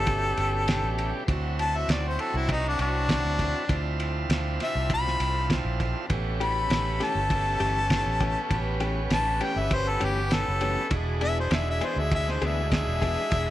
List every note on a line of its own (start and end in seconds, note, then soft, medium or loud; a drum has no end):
0.00 0.34 G1 medium
0.00 1.23 B2 medium
0.00 1.24 G3 medium
0.00 1.24 A3 medium
0.00 1.23 C#4 medium
0.00 1.24 E4 medium
0.00 1.24 G4 medium
0.00 1.26 A4 loud
0.07 kick loud
0.07 ride medium
0.37 0.80 G1 medium
0.37 ride medium
0.68 snare loud
0.68 ride medium
0.83 1.11 A1 medium
0.98 ride medium
1.27 1.85 D2 medium
1.27 3.67 F#3 medium
1.27 3.64 C4 medium
1.27 3.67 C4 medium
1.27 6.07 D4 medium
1.27 3.65 E4 medium
1.27 3.65 F#4 medium
1.27 3.67 F#4 medium
1.27 kick loud
1.27 ride medium
1.59 1.78 A5 loud
1.59 ride medium
1.76 1.93 E5 loud
1.89 2.17 D2 loud
1.89 2.04 D5 medium
1.89 snare loud
1.89 ride medium
2.08 2.22 C5 medium
2.19 2.38 A4 medium
2.19 ride medium
2.34 2.76 C2 loud
2.34 2.49 E4 medium
2.49 2.64 D#4 loud
2.49 kick loud
2.49 ride medium
2.68 2.80 D4 medium
2.79 3.21 C2 medium
2.79 3.97 D4 loud
2.79 ride medium
3.09 kick medium
3.09 snare loud
3.09 ride medium
3.25 3.53 D2 medium
3.39 kick medium
3.39 ride medium
3.68 4.26 D2 loud
3.68 6.08 F3 medium
3.68 6.05 C4 medium
3.68 6.08 C4 medium
3.68 6.06 E4 medium
3.68 6.06 F4 medium
3.68 kick loud
3.68 ride medium
4.00 ride medium
4.29 4.58 D2 loud
4.29 snare loud
4.29 ride medium
4.60 4.91 E5 loud
4.60 snare soft
4.60 ride medium
4.75 5.17 C2 loud
4.90 5.50 B5 loud
4.90 kick loud
4.90 ride medium
5.07 snare soft
5.20 5.62 C2 medium
5.20 ride medium
5.50 kick medium
5.50 snare loud
5.50 ride medium
5.65 5.93 A#1 medium
5.80 kick medium
5.80 ride medium
6.09 6.66 A1 loud
6.09 8.49 A3 medium
6.09 10.87 B3 medium
6.09 10.88 C#4 medium
6.09 10.88 G4 medium
6.09 8.49 A4 medium
6.09 kick loud
6.09 ride medium
6.40 6.59 E3 medium
6.40 6.59 A3 medium
6.40 6.59 C#4 medium
6.40 6.59 G4 medium
6.40 7.05 B5 loud
6.40 ride medium
6.70 6.98 A1 loud
6.70 snare loud
6.70 ride medium
7.00 7.19 E3 medium
7.00 7.19 A3 medium
7.00 7.19 C#4 medium
7.00 7.19 G4 medium
7.00 8.78 A5 loud
7.00 snare soft
7.00 ride medium
7.15 7.57 G1 medium
7.30 kick loud
7.30 ride medium
7.60 8.03 G1 medium
7.60 7.79 E3 medium
7.60 7.79 A3 medium
7.60 7.79 C#4 medium
7.60 7.79 G4 medium
7.60 ride medium
7.90 kick medium
7.90 snare loud
7.90 ride medium
8.06 8.34 A1 medium
8.20 8.40 E3 medium
8.20 8.40 A3 medium
8.20 8.39 C#4 medium
8.20 8.39 G4 medium
8.20 kick medium
8.20 ride medium
8.51 9.07 A1 loud
8.51 10.89 B3 medium
8.51 10.89 B4 medium
8.51 kick loud
8.51 ride medium
8.80 9.00 E3 medium
8.80 9.00 A3 medium
8.80 8.99 C#4 medium
8.80 8.99 G4 medium
8.80 ride medium
9.10 9.39 A1 loud
9.10 9.45 A5 loud
9.10 snare loud
9.10 ride medium
9.41 9.60 E3 medium
9.41 9.60 A3 medium
9.41 9.60 C#4 medium
9.41 9.59 G4 medium
9.41 9.61 G5 medium
9.41 ride medium
9.56 9.98 G1 loud
9.56 9.76 E5 loud
9.71 9.90 C5 loud
9.71 kick loud
9.71 ride medium
9.89 10.05 A4 loud
10.00 10.44 G1 medium
10.00 10.20 E3 medium
10.00 10.20 A3 medium
10.00 10.20 C#4 medium
10.00 10.19 G4 medium
10.00 10.35 G4 medium
10.00 ride medium
10.31 10.91 A4 loud
10.31 snare loud
10.31 ride medium
10.48 10.76 F#1 medium
10.61 10.81 E3 medium
10.61 10.80 A3 medium
10.61 10.80 C#4 medium
10.61 10.80 G4 medium
10.61 ride medium
10.89 11.48 E1 loud
10.89 13.50 G#3 medium
10.89 13.50 D4 medium
10.89 13.50 E4 medium
10.89 13.50 F#4 medium
10.89 13.50 G#4 medium
10.89 kick loud
10.89 ride medium
11.21 11.41 E3 medium
11.21 11.40 B3 medium
11.21 11.40 D4 medium
11.21 11.40 G#4 medium
11.21 11.37 E5 loud
11.21 ride medium
11.40 11.57 C5 loud
11.51 11.80 E1 loud
11.51 snare loud
11.51 ride medium
11.55 11.68 E5 loud
11.70 11.86 E5 loud
11.81 12.01 E3 medium
11.81 12.00 B3 medium
11.81 12.00 D4 medium
11.81 12.00 G#4 medium
11.81 12.01 C5 medium
11.81 ride medium
11.96 12.39 D2 loud
11.96 12.12 E5 medium
12.11 12.32 E5 loud
12.11 kick loud
12.11 ride medium
12.28 12.43 C5 loud
12.28 snare soft
12.42 12.84 D2 medium
12.42 12.61 E3 medium
12.42 12.61 B3 medium
12.42 12.61 D4 medium
12.42 12.60 G#4 medium
12.42 ride medium
12.46 12.73 E5 medium
12.72 13.50 E5 loud
12.72 kick medium
12.72 snare loud
12.72 ride medium
12.87 13.16 E1 medium
13.01 13.21 E3 medium
13.01 13.21 B3 medium
13.01 13.21 D4 medium
13.01 13.20 G#4 medium
13.01 kick medium
13.01 ride medium
13.31 13.50 E1 loud
13.31 kick loud
13.31 ride medium